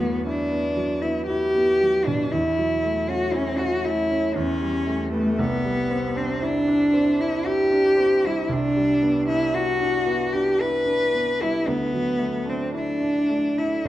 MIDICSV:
0, 0, Header, 1, 3, 480
1, 0, Start_track
1, 0, Key_signature, 1, "minor"
1, 0, Tempo, 1027397
1, 1083, Time_signature, 3, 2, 24, 8
1, 2997, Tempo, 1039861
1, 4437, Tempo, 1067616
1, 5877, Tempo, 1117318
1, 6368, End_track
2, 0, Start_track
2, 0, Title_t, "Cello"
2, 0, Program_c, 0, 42
2, 0, Note_on_c, 0, 59, 58
2, 118, Note_off_c, 0, 59, 0
2, 124, Note_on_c, 0, 62, 76
2, 474, Note_on_c, 0, 64, 59
2, 481, Note_off_c, 0, 62, 0
2, 586, Note_off_c, 0, 64, 0
2, 589, Note_on_c, 0, 67, 76
2, 962, Note_on_c, 0, 62, 68
2, 969, Note_off_c, 0, 67, 0
2, 1082, Note_on_c, 0, 64, 66
2, 1089, Note_off_c, 0, 62, 0
2, 1447, Note_on_c, 0, 66, 70
2, 1454, Note_off_c, 0, 64, 0
2, 1557, Note_on_c, 0, 61, 69
2, 1564, Note_off_c, 0, 66, 0
2, 1674, Note_on_c, 0, 66, 70
2, 1681, Note_off_c, 0, 61, 0
2, 1798, Note_on_c, 0, 64, 76
2, 1805, Note_off_c, 0, 66, 0
2, 2037, Note_on_c, 0, 61, 77
2, 2044, Note_off_c, 0, 64, 0
2, 2386, Note_off_c, 0, 61, 0
2, 2388, Note_on_c, 0, 57, 67
2, 2519, Note_on_c, 0, 59, 81
2, 2526, Note_off_c, 0, 57, 0
2, 2882, Note_on_c, 0, 60, 66
2, 2889, Note_off_c, 0, 59, 0
2, 3004, Note_on_c, 0, 62, 79
2, 3010, Note_off_c, 0, 60, 0
2, 3361, Note_on_c, 0, 64, 66
2, 3368, Note_off_c, 0, 62, 0
2, 3481, Note_on_c, 0, 67, 81
2, 3488, Note_off_c, 0, 64, 0
2, 3851, Note_on_c, 0, 64, 69
2, 3858, Note_off_c, 0, 67, 0
2, 3973, Note_on_c, 0, 62, 77
2, 3980, Note_off_c, 0, 64, 0
2, 4318, Note_off_c, 0, 62, 0
2, 4321, Note_on_c, 0, 64, 71
2, 4442, Note_on_c, 0, 66, 75
2, 4448, Note_off_c, 0, 64, 0
2, 4794, Note_on_c, 0, 67, 70
2, 4800, Note_off_c, 0, 66, 0
2, 4921, Note_on_c, 0, 71, 82
2, 4927, Note_off_c, 0, 67, 0
2, 5285, Note_on_c, 0, 64, 73
2, 5292, Note_off_c, 0, 71, 0
2, 5401, Note_on_c, 0, 59, 77
2, 5408, Note_off_c, 0, 64, 0
2, 5767, Note_on_c, 0, 60, 64
2, 5774, Note_off_c, 0, 59, 0
2, 5879, Note_off_c, 0, 60, 0
2, 5882, Note_on_c, 0, 62, 75
2, 6240, Note_on_c, 0, 64, 58
2, 6247, Note_off_c, 0, 62, 0
2, 6365, Note_off_c, 0, 64, 0
2, 6368, End_track
3, 0, Start_track
3, 0, Title_t, "Grand piano"
3, 0, Program_c, 1, 0
3, 0, Control_c, 1, 64, 127
3, 0, Note_on_c, 1, 40, 55
3, 0, Note_on_c, 1, 54, 52
3, 0, Note_on_c, 1, 59, 43
3, 71, Note_off_c, 1, 59, 0
3, 124, Note_on_c, 1, 64, 51
3, 190, Note_off_c, 1, 54, 0
3, 240, Note_on_c, 1, 59, 46
3, 313, Note_off_c, 1, 64, 0
3, 359, Note_on_c, 1, 54, 47
3, 431, Note_off_c, 1, 59, 0
3, 484, Note_on_c, 1, 59, 43
3, 551, Note_off_c, 1, 54, 0
3, 606, Note_on_c, 1, 64, 51
3, 674, Note_off_c, 1, 59, 0
3, 724, Note_on_c, 1, 59, 45
3, 796, Note_off_c, 1, 64, 0
3, 845, Note_on_c, 1, 54, 41
3, 916, Note_off_c, 1, 59, 0
3, 968, Note_on_c, 1, 47, 44
3, 1036, Note_off_c, 1, 54, 0
3, 1066, Note_off_c, 1, 40, 0
3, 1084, Note_on_c, 1, 40, 52
3, 1086, Note_off_c, 1, 47, 0
3, 1090, Control_c, 1, 64, 0
3, 1162, Control_c, 1, 64, 127
3, 1207, Note_on_c, 1, 54, 46
3, 1324, Note_on_c, 1, 57, 44
3, 1396, Note_off_c, 1, 54, 0
3, 1441, Note_on_c, 1, 61, 49
3, 1514, Note_off_c, 1, 57, 0
3, 1559, Note_on_c, 1, 64, 53
3, 1631, Note_off_c, 1, 61, 0
3, 1683, Note_on_c, 1, 61, 50
3, 1750, Note_off_c, 1, 64, 0
3, 1798, Note_on_c, 1, 57, 42
3, 1870, Note_off_c, 1, 61, 0
3, 1918, Note_on_c, 1, 61, 46
3, 1988, Note_off_c, 1, 57, 0
3, 2017, Note_off_c, 1, 40, 0
3, 2035, Note_on_c, 1, 40, 63
3, 2036, Note_off_c, 1, 61, 0
3, 2041, Control_c, 1, 64, 0
3, 2124, Control_c, 1, 64, 127
3, 2153, Note_on_c, 1, 55, 45
3, 2274, Note_on_c, 1, 57, 48
3, 2345, Note_off_c, 1, 55, 0
3, 2392, Note_on_c, 1, 59, 46
3, 2466, Note_off_c, 1, 57, 0
3, 2500, Note_off_c, 1, 40, 0
3, 2513, Note_off_c, 1, 59, 0
3, 2516, Note_on_c, 1, 36, 61
3, 2522, Control_c, 1, 64, 0
3, 2590, Control_c, 1, 64, 127
3, 2639, Note_on_c, 1, 55, 46
3, 2756, Note_on_c, 1, 60, 48
3, 2829, Note_off_c, 1, 55, 0
3, 2876, Note_on_c, 1, 62, 50
3, 2948, Note_off_c, 1, 60, 0
3, 3000, Note_on_c, 1, 64, 54
3, 3066, Note_off_c, 1, 62, 0
3, 3118, Note_on_c, 1, 62, 53
3, 3188, Note_off_c, 1, 64, 0
3, 3237, Note_on_c, 1, 60, 45
3, 3307, Note_off_c, 1, 62, 0
3, 3355, Note_on_c, 1, 62, 50
3, 3428, Note_off_c, 1, 60, 0
3, 3478, Note_on_c, 1, 64, 55
3, 3549, Note_off_c, 1, 62, 0
3, 3599, Note_on_c, 1, 62, 48
3, 3672, Note_off_c, 1, 64, 0
3, 3714, Note_on_c, 1, 60, 48
3, 3793, Note_off_c, 1, 62, 0
3, 3841, Note_on_c, 1, 55, 46
3, 3910, Note_off_c, 1, 60, 0
3, 3944, Note_off_c, 1, 36, 0
3, 3956, Note_on_c, 1, 36, 59
3, 3961, Note_off_c, 1, 55, 0
3, 3967, Control_c, 1, 64, 0
3, 4037, Control_c, 1, 64, 127
3, 4081, Note_on_c, 1, 55, 46
3, 4200, Note_on_c, 1, 59, 46
3, 4270, Note_off_c, 1, 55, 0
3, 4319, Note_on_c, 1, 62, 47
3, 4389, Note_off_c, 1, 59, 0
3, 4437, Note_on_c, 1, 64, 54
3, 4507, Note_off_c, 1, 62, 0
3, 4556, Note_on_c, 1, 62, 51
3, 4623, Note_off_c, 1, 64, 0
3, 4675, Note_on_c, 1, 59, 45
3, 4743, Note_off_c, 1, 62, 0
3, 4797, Note_on_c, 1, 62, 45
3, 4863, Note_off_c, 1, 59, 0
3, 4916, Note_on_c, 1, 64, 51
3, 4985, Note_off_c, 1, 62, 0
3, 5030, Note_on_c, 1, 62, 46
3, 5105, Note_off_c, 1, 64, 0
3, 5156, Note_on_c, 1, 59, 42
3, 5223, Note_off_c, 1, 62, 0
3, 5282, Note_on_c, 1, 55, 44
3, 5345, Note_off_c, 1, 59, 0
3, 5370, Note_off_c, 1, 36, 0
3, 5396, Note_off_c, 1, 55, 0
3, 5398, Control_c, 1, 64, 0
3, 5398, Note_on_c, 1, 38, 53
3, 5468, Control_c, 1, 64, 127
3, 5521, Note_on_c, 1, 54, 43
3, 5630, Note_on_c, 1, 57, 44
3, 5708, Note_off_c, 1, 54, 0
3, 5752, Note_on_c, 1, 62, 47
3, 5826, Note_off_c, 1, 57, 0
3, 5878, Note_on_c, 1, 64, 45
3, 5946, Note_off_c, 1, 62, 0
3, 5992, Note_on_c, 1, 62, 44
3, 6068, Note_off_c, 1, 64, 0
3, 6116, Note_on_c, 1, 57, 39
3, 6185, Note_off_c, 1, 62, 0
3, 6236, Note_on_c, 1, 62, 37
3, 6308, Note_off_c, 1, 57, 0
3, 6342, Note_off_c, 1, 38, 0
3, 6354, Note_on_c, 1, 33, 53
3, 6356, Note_off_c, 1, 62, 0
3, 6362, Control_c, 1, 64, 0
3, 6368, Note_off_c, 1, 33, 0
3, 6368, End_track
0, 0, End_of_file